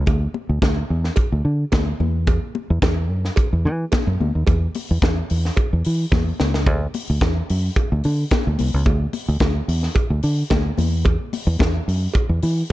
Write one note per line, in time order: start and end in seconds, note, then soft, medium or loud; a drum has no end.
0.06 0.26 D2 loud
0.06 kick loud
0.06 closed hi-hat medium
0.06 cowbell medium
0.06 muted conga soft
0.34 muted conga soft
0.49 0.58 D2 medium
0.62 0.81 D2 medium
0.62 kick loud
0.62 snare medium
0.62 closed hi-hat medium
0.62 cowbell medium
0.62 high conga medium
0.90 1.09 E2 medium
1.04 snare soft
1.16 kick loud
1.16 closed hi-hat medium
1.16 cowbell medium
1.32 1.41 D2 medium
1.45 1.64 D3 medium
1.72 1.91 D2 medium
1.72 kick loud
1.72 snare loud
1.72 closed hi-hat medium
1.72 cowbell medium
1.72 high conga medium
2.00 2.37 E2 medium
2.00 high conga medium
2.27 kick loud
2.27 closed hi-hat medium
2.27 cowbell medium
2.27 muted conga soft
2.55 muted conga medium
2.70 2.79 E2 medium
2.82 3.10 E2 medium
2.82 kick loud
2.82 snare loud
2.82 closed hi-hat medium
2.82 cowbell medium
2.82 high conga medium
3.10 3.29 F#2 medium
3.25 snare soft
3.36 kick loud
3.36 closed hi-hat medium
3.36 cowbell medium
3.53 3.67 E2 medium
3.65 3.84 E3 medium
3.65 muted conga soft
3.92 kick loud
3.92 snare loud
3.92 closed hi-hat medium
3.92 cowbell medium
3.92 high conga medium
4.07 4.16 F#2 medium
4.20 4.30 D2 medium
4.20 high conga medium
4.35 4.44 D#2 medium
4.47 4.66 E2 medium
4.47 kick loud
4.47 closed hi-hat medium
4.47 cowbell medium
4.47 muted conga soft
4.74 open hi-hat medium
4.74 muted conga medium
4.91 4.99 E2 medium
5.02 5.21 E2 medium
5.02 kick loud
5.02 snare loud
5.02 closed hi-hat medium
5.02 cowbell medium
5.02 high conga medium
5.30 5.49 E2 medium
5.30 open hi-hat medium
5.45 snare soft
5.57 kick medium
5.57 closed hi-hat medium
5.57 cowbell medium
5.73 5.81 E2 medium
5.84 6.04 E3 medium
5.84 open hi-hat medium
6.12 6.31 E2 medium
6.12 kick loud
6.12 snare medium
6.12 cowbell medium
6.12 high conga medium
6.40 6.67 C#2 medium
6.40 snare medium
6.40 high conga medium
6.54 snare medium
6.66 6.86 D2 medium
6.66 kick loud
6.66 closed hi-hat medium
6.66 cowbell medium
6.66 muted conga soft
6.94 open hi-hat medium
6.94 muted conga medium
7.10 7.18 D2 medium
7.21 7.40 E2 medium
7.21 kick loud
7.21 snare loud
7.21 closed hi-hat medium
7.21 cowbell medium
7.21 high conga medium
7.49 7.69 F#2 medium
7.49 open hi-hat medium
7.76 kick loud
7.76 closed hi-hat medium
7.76 cowbell medium
7.92 8.00 D2 medium
8.04 8.23 D3 medium
8.04 open hi-hat medium
8.04 muted conga soft
8.30 kick loud
8.30 snare loud
8.30 closed hi-hat medium
8.30 cowbell medium
8.30 high conga medium
8.47 8.55 D2 medium
8.59 8.69 C2 medium
8.59 open hi-hat medium
8.59 high conga medium
8.74 8.83 C#2 medium
8.85 9.05 D2 medium
8.85 kick loud
8.85 closed hi-hat medium
8.85 cowbell medium
8.85 muted conga soft
9.13 open hi-hat medium
9.13 muted conga medium
9.28 9.37 D2 medium
9.40 9.60 D2 medium
9.40 kick medium
9.40 snare loud
9.40 closed hi-hat medium
9.40 cowbell medium
9.40 high conga medium
9.68 9.87 E2 medium
9.68 open hi-hat medium
9.83 snare soft
9.95 kick loud
9.95 closed hi-hat medium
9.95 cowbell medium
10.10 10.19 D2 medium
10.23 10.42 D3 medium
10.23 open hi-hat medium
10.50 10.70 D2 medium
10.50 kick loud
10.50 snare loud
10.50 cowbell medium
10.50 high conga medium
10.78 11.15 E2 medium
10.78 open hi-hat medium
10.78 high conga medium
11.05 kick loud
11.05 closed hi-hat medium
11.05 cowbell medium
11.05 muted conga soft
11.33 open hi-hat medium
11.33 muted conga medium
11.47 11.56 E2 medium
11.59 11.79 E2 medium
11.59 kick loud
11.59 snare loud
11.59 closed hi-hat medium
11.59 cowbell medium
11.59 high conga medium
11.88 12.06 F#2 medium
11.88 open hi-hat medium
12.14 kick loud
12.14 closed hi-hat medium
12.14 cowbell medium
12.29 12.38 E2 medium
12.42 12.62 E3 medium
12.42 open hi-hat medium
12.42 muted conga soft